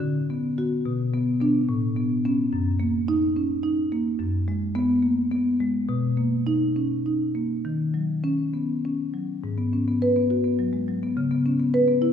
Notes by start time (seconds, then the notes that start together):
0.00 D3
0.30 B3
0.58 B3 F#4
0.85 B2
1.14 B3
1.41 B3 D4
1.69 A2
1.96 B3
2.25 B3 C#4
2.53 F#2
2.80 A#3
3.08 D#4
3.36 C#4
3.63 D#4
3.92 A#3
4.20 F#2
4.48 G#3
4.75 B3
5.03 A#3
5.31 B3
5.60 G#3
5.89 B2
6.17 A#3
6.47 D#4
6.76 C#4
7.06 D#4
7.35 A#3
7.65 D#3
7.94 F#3
8.24 C#4
8.54 B3
8.85 C#4
9.14 F#3
9.44 G#2
9.58 B3
9.73 C#4
9.88 B3
10.02 B4
10.16 B3
10.30 F#4
10.44 B3
10.59 F#3
10.73 G#3
10.88 F#3
11.03 B3
11.17 C#3
11.31 B3
11.46 C#4
11.59 B3
11.74 B4
11.88 B3
12.02 E4